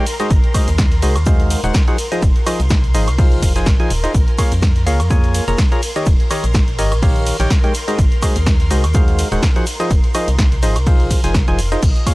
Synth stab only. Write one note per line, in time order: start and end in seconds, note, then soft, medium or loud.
0.20 0.32 G#3 loud
0.20 0.32 D#4 medium
0.20 0.32 F#4 medium
0.20 0.32 G#4 medium
0.20 0.32 C5 medium
0.20 0.32 D#5 loud
0.54 0.69 G#3 loud
0.54 0.69 D#4 medium
0.54 0.69 F#4 medium
0.54 0.69 G#4 medium
0.54 0.69 C5 medium
0.54 0.69 D#5 loud
1.03 1.17 G#3 medium
1.03 1.17 D#4 medium
1.03 1.17 F#4 medium
1.03 1.17 G#4 medium
1.03 1.17 C5 medium
1.03 1.17 D#5 medium
1.26 1.61 G#3 loud
1.26 1.61 D#4 medium
1.26 1.61 F#4 medium
1.26 1.61 G#4 medium
1.26 1.61 C5 medium
1.26 1.61 F5 loud
1.64 1.76 G#3 medium
1.64 1.76 D#4 medium
1.64 1.76 F#4 medium
1.64 1.76 G#4 medium
1.64 1.76 C5 medium
1.64 1.76 F#5 loud
1.88 1.97 F3 medium
1.88 1.97 D#4 medium
1.88 1.97 F#4 medium
1.88 1.97 G#4 medium
1.88 1.97 C5 medium
1.88 1.97 F#5 medium
2.12 2.24 F3 medium
2.12 2.24 D#4 medium
2.12 2.24 F4 medium
2.12 2.24 G#4 medium
2.12 2.24 C5 medium
2.12 2.24 D#5 loud
2.46 2.61 F3 medium
2.46 2.61 D#4 medium
2.46 2.61 F4 medium
2.46 2.61 G#4 medium
2.46 2.61 C5 medium
2.46 2.61 D#5 loud
2.94 3.09 F3 medium
2.94 3.09 D#4 medium
2.94 3.09 F4 medium
2.94 3.09 G#4 medium
2.94 3.09 C5 medium
2.94 3.09 D#5 medium
3.18 3.53 F3 medium
3.18 3.53 D#4 medium
3.18 3.53 F4 medium
3.18 3.53 G#4 medium
3.18 3.53 C5 medium
3.18 3.53 F5 loud
3.56 3.68 F3 medium
3.56 3.68 D#4 medium
3.56 3.68 F4 medium
3.56 3.68 G#4 medium
3.56 3.68 C5 medium
3.56 3.68 G#5 loud
3.80 3.92 F3 medium
3.80 3.92 D#4 medium
3.80 3.92 F4 medium
3.80 3.92 G#4 medium
3.80 3.92 C5 medium
3.80 3.92 G#5 medium
4.04 4.13 D#4 medium
4.04 4.13 F4 medium
4.04 4.13 G#4 medium
4.04 4.13 C5 medium
4.04 4.13 D#5 loud
4.39 4.53 A#3 loud
4.39 4.53 F4 medium
4.39 4.53 G#4 medium
4.39 4.53 A#4 medium
4.39 4.53 C#5 medium
4.39 4.53 F5 loud
4.87 5.01 A#3 medium
4.87 5.01 F4 medium
4.87 5.01 G#4 medium
4.87 5.01 A#4 medium
4.87 5.01 C#5 medium
4.87 5.01 F5 medium
5.11 5.45 A#3 loud
5.11 5.45 F4 medium
5.11 5.45 G#4 medium
5.11 5.45 A#4 medium
5.11 5.45 C#5 medium
5.11 5.45 G#5 loud
5.48 5.60 A#3 medium
5.48 5.60 F4 medium
5.48 5.60 G#4 medium
5.48 5.60 A#4 medium
5.48 5.60 C#5 medium
5.48 5.60 A#5 medium
5.72 5.81 F4 medium
5.72 5.81 G#4 medium
5.72 5.81 A#4 medium
5.72 5.81 C#5 medium
5.72 5.81 A#5 medium
5.96 6.08 D#3 medium
5.96 6.08 D#4 medium
5.96 6.08 G4 medium
5.96 6.08 A#4 medium
5.96 6.08 C#5 medium
5.96 6.08 D#5 loud
6.31 6.45 D#3 medium
6.31 6.45 D#4 medium
6.31 6.45 G4 medium
6.31 6.45 A#4 medium
6.31 6.45 C#5 medium
6.31 6.45 D#5 loud
6.79 6.93 D#3 medium
6.79 6.93 D#4 medium
6.79 6.93 G4 medium
6.79 6.93 A#4 medium
6.79 6.93 C#5 medium
6.79 6.93 D#5 loud
7.03 7.37 D#3 loud
7.03 7.37 D#4 medium
7.03 7.37 G4 medium
7.03 7.37 A#4 medium
7.03 7.37 C#5 medium
7.03 7.37 F5 loud
7.40 7.52 D#3 medium
7.40 7.52 D#4 medium
7.40 7.52 G4 medium
7.40 7.52 A#4 medium
7.40 7.52 C#5 medium
7.40 7.52 G5 loud
7.64 7.73 G#3 medium
7.64 7.73 D#4 medium
7.64 7.73 G4 medium
7.64 7.73 A#4 medium
7.64 7.73 C#5 medium
7.64 7.73 G5 medium
7.88 8.00 G#3 medium
7.88 8.00 D#4 medium
7.88 8.00 F#4 medium
7.88 8.00 G#4 medium
7.88 8.00 C5 medium
7.88 8.00 D#5 loud
8.22 8.37 G#3 loud
8.22 8.37 D#4 medium
8.22 8.37 F#4 medium
8.22 8.37 G#4 medium
8.22 8.37 C5 medium
8.22 8.37 D#5 loud
8.71 8.85 G#3 medium
8.71 8.85 D#4 medium
8.71 8.85 F#4 medium
8.71 8.85 G#4 medium
8.71 8.85 C5 medium
8.71 8.85 D#5 medium
8.95 9.29 G#3 medium
8.95 9.29 D#4 medium
8.95 9.29 F#4 medium
8.95 9.29 G#4 medium
8.95 9.29 C5 medium
8.95 9.29 F5 loud
9.32 9.44 G#3 medium
9.32 9.44 D#4 medium
9.32 9.44 F#4 medium
9.32 9.44 G#4 medium
9.32 9.44 C5 medium
9.32 9.44 F#5 loud
9.56 9.65 F3 medium
9.56 9.65 D#4 medium
9.56 9.65 F#4 medium
9.56 9.65 G#4 medium
9.56 9.65 C5 medium
9.56 9.65 F#5 medium
9.80 9.92 F3 medium
9.80 9.92 D#4 medium
9.80 9.92 F4 medium
9.80 9.92 G#4 medium
9.80 9.92 C5 medium
9.80 9.92 D#5 loud
10.15 10.29 F3 medium
10.15 10.29 D#4 medium
10.15 10.29 F4 medium
10.15 10.29 G#4 medium
10.15 10.29 C5 medium
10.15 10.29 D#5 loud
10.63 10.77 F3 medium
10.63 10.77 D#4 medium
10.63 10.77 F4 medium
10.63 10.77 G#4 medium
10.63 10.77 C5 medium
10.63 10.77 D#5 medium
10.87 11.21 F3 loud
10.87 11.21 D#4 medium
10.87 11.21 F4 medium
10.87 11.21 G#4 medium
10.87 11.21 C5 medium
10.87 11.21 F5 loud
11.24 11.36 F3 medium
11.24 11.36 D#4 medium
11.24 11.36 F4 medium
11.24 11.36 G#4 medium
11.24 11.36 C5 medium
11.24 11.36 G#5 loud
11.48 11.60 F3 medium
11.48 11.60 D#4 medium
11.48 11.60 F4 medium
11.48 11.60 G#4 medium
11.48 11.60 C5 medium
11.48 11.60 G#5 loud
11.72 11.81 D#4 medium
11.72 11.81 F4 medium
11.72 11.81 G#4 medium
11.72 11.81 C5 medium
11.72 11.81 D#5 loud
12.07 12.14 A#3 loud
12.07 12.14 F4 medium
12.07 12.14 G#4 medium
12.07 12.14 A#4 medium
12.07 12.14 C#5 medium
12.07 12.14 F5 loud